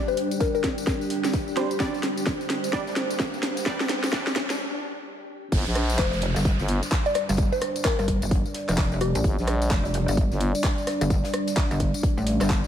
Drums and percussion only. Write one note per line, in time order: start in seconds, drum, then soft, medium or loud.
0.08 tambourine soft
0.17 closed hi-hat medium
0.17 open hi-hat loud
0.31 closed hi-hat medium
0.31 tambourine medium
0.40 kick loud
0.40 snare loud
0.40 closed hi-hat medium
0.40 tambourine medium
0.55 tambourine soft
0.64 kick medium
0.64 snare medium
0.64 closed hi-hat medium
0.64 open hi-hat loud
0.78 closed hi-hat medium
0.78 tambourine medium
0.87 kick loud
0.87 snare medium
0.87 closed hi-hat medium
0.87 tambourine medium
1.01 tambourine soft
1.10 snare medium
1.10 closed hi-hat medium
1.10 open hi-hat loud
1.24 snare medium
1.24 closed hi-hat medium
1.24 tambourine medium
1.33 kick loud
1.33 snare loud
1.33 closed hi-hat medium
1.33 tambourine medium
1.48 tambourine soft
1.57 snare medium
1.57 closed hi-hat medium
1.57 open hi-hat loud
1.71 closed hi-hat medium
1.71 tambourine medium
1.80 kick loud
1.80 snare medium
1.80 closed hi-hat medium
1.80 tambourine medium
1.94 snare soft
1.94 tambourine soft
2.03 snare medium
2.03 closed hi-hat medium
2.03 open hi-hat loud
2.17 closed hi-hat soft
2.17 tambourine medium
2.26 kick loud
2.26 snare loud
2.26 snare medium
2.26 closed hi-hat medium
2.26 tambourine medium
2.41 closed hi-hat soft
2.41 tambourine soft
2.50 snare medium
2.50 snare soft
2.50 closed hi-hat medium
2.50 open hi-hat loud
2.64 snare soft
2.64 closed hi-hat soft
2.64 tambourine medium
2.73 kick loud
2.73 snare medium
2.73 closed hi-hat medium
2.87 snare medium
2.87 tambourine soft
2.96 snare medium
2.96 closed hi-hat medium
2.96 open hi-hat loud
3.11 closed hi-hat medium
3.11 tambourine medium
3.19 kick loud
3.19 snare loud
3.19 snare medium
3.19 closed hi-hat medium
3.19 tambourine soft
3.34 tambourine soft
3.43 snare medium
3.43 closed hi-hat medium
3.43 open hi-hat loud
3.57 snare medium
3.57 closed hi-hat medium
3.57 tambourine medium
3.66 kick loud
3.66 snare medium
3.66 closed hi-hat loud
3.66 closed hi-hat medium
3.80 snare medium
3.80 tambourine soft
3.89 snare medium
3.89 closed hi-hat medium
3.89 open hi-hat loud
4.04 snare medium
4.04 closed hi-hat medium
4.04 tambourine medium
4.13 kick loud
4.13 snare medium
4.13 snare loud
4.13 closed hi-hat loud
4.13 closed hi-hat medium
4.27 snare medium
4.27 tambourine soft
4.36 kick medium
4.36 snare loud
4.36 closed hi-hat medium
4.36 open hi-hat loud
4.50 snare medium
4.50 closed hi-hat soft
4.50 tambourine medium
5.52 kick loud
5.52 closed hi-hat medium
5.52 crash loud
5.52 tambourine medium
5.66 snare soft
5.66 tambourine soft
5.75 cross-stick medium
5.75 closed hi-hat medium
5.75 open hi-hat loud
5.90 closed hi-hat medium
5.90 tambourine medium
5.98 kick loud
5.98 snare loud
5.98 clap loud
5.98 closed hi-hat medium
6.12 closed hi-hat soft
6.12 tambourine soft
6.21 snare soft
6.21 closed hi-hat medium
6.21 open hi-hat loud
6.36 closed hi-hat medium
6.36 tambourine medium
6.45 kick loud
6.45 closed hi-hat medium
6.45 closed hi-hat loud
6.45 tambourine medium
6.59 snare medium
6.59 tambourine soft
6.68 closed hi-hat medium
6.68 open hi-hat loud
6.83 closed hi-hat medium
6.83 tambourine medium
6.91 kick loud
6.91 snare loud
6.91 clap loud
6.91 closed hi-hat medium
7.06 tambourine soft
7.14 cross-stick medium
7.14 closed hi-hat medium
7.14 open hi-hat loud
7.29 snare medium
7.29 closed hi-hat medium
7.29 tambourine medium
7.37 kick loud
7.37 closed hi-hat medium
7.37 tambourine medium
7.53 tambourine soft
7.61 cross-stick medium
7.61 closed hi-hat medium
7.61 open hi-hat loud
7.76 closed hi-hat medium
7.76 tambourine medium
7.85 kick loud
7.85 snare loud
7.85 clap loud
7.85 closed hi-hat medium
7.99 closed hi-hat soft
7.99 tambourine soft
8.08 kick medium
8.08 closed hi-hat medium
8.08 open hi-hat loud
8.22 closed hi-hat medium
8.22 tambourine medium
8.31 kick loud
8.31 closed hi-hat medium
8.31 closed hi-hat loud
8.46 tambourine soft
8.54 snare medium
8.54 closed hi-hat medium
8.54 open hi-hat loud
8.69 cross-stick medium
8.69 clap soft
8.69 closed hi-hat medium
8.69 tambourine medium
8.78 kick loud
8.78 snare loud
8.78 clap loud
8.78 closed hi-hat medium
8.78 open hi-hat medium
8.92 tambourine soft
9.01 cross-stick medium
9.01 closed hi-hat medium
9.01 open hi-hat loud
9.15 closed hi-hat medium
9.15 tambourine medium
9.24 kick loud
9.24 closed hi-hat medium
9.24 tambourine medium
9.38 snare soft
9.38 tambourine soft
9.47 cross-stick medium
9.47 closed hi-hat medium
9.47 open hi-hat loud
9.62 closed hi-hat soft
9.62 tambourine medium
9.71 kick loud
9.71 snare loud
9.71 clap loud
9.71 closed hi-hat medium
9.71 tambourine medium
9.85 closed hi-hat soft
9.85 tambourine soft
9.93 snare soft
9.93 closed hi-hat medium
9.93 open hi-hat loud
10.08 snare soft
10.08 closed hi-hat soft
10.08 tambourine medium
10.17 kick loud
10.17 closed hi-hat medium
10.31 snare medium
10.31 tambourine soft
10.40 closed hi-hat medium
10.40 open hi-hat loud
10.55 closed hi-hat medium
10.55 tambourine medium
10.64 kick loud
10.64 snare loud
10.64 clap loud
10.64 closed hi-hat medium
10.78 tambourine soft
10.87 cross-stick medium
10.87 snare loud
10.87 closed hi-hat medium
10.87 open hi-hat loud
11.01 closed hi-hat medium
11.01 closed hi-hat soft
11.01 tambourine medium
11.10 kick loud
11.10 snare soft
11.10 closed hi-hat medium
11.10 tambourine medium
11.24 snare loud
11.24 closed hi-hat medium
11.24 tambourine soft
11.34 cross-stick medium
11.34 open hi-hat loud
11.47 snare soft
11.47 closed hi-hat medium
11.47 tambourine medium
11.56 kick loud
11.56 snare loud
11.56 clap loud
11.56 closed hi-hat medium
11.71 closed hi-hat soft
11.71 tambourine soft
11.80 kick medium
11.80 snare soft
11.80 closed hi-hat medium
11.80 open hi-hat loud
11.94 closed hi-hat medium
11.94 tambourine medium
12.03 kick loud
12.03 closed hi-hat medium
12.03 closed hi-hat loud
12.18 tambourine soft
12.27 snare medium
12.27 closed hi-hat medium
12.27 open hi-hat loud
12.41 cross-stick medium
12.41 clap soft
12.41 closed hi-hat medium
12.41 tambourine medium
12.50 kick loud
12.50 snare loud
12.50 clap loud
12.50 closed hi-hat medium
12.50 open hi-hat medium
12.64 tambourine soft